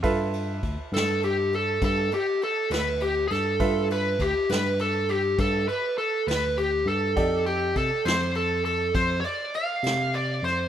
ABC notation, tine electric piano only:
X:1
M:12/8
L:1/16
Q:3/8=67
K:Gmix
V:1 name="Tine electric piano" clef=bass
G,,4 D,, z G,,6 G,,2 z4 D,,4 G,,2 | G,,4 D,, z G,,6 G,,2 z4 D,,4 G,,2 | F,,4 C, z F,,6 F,,2 z4 C,4 F,,2 |]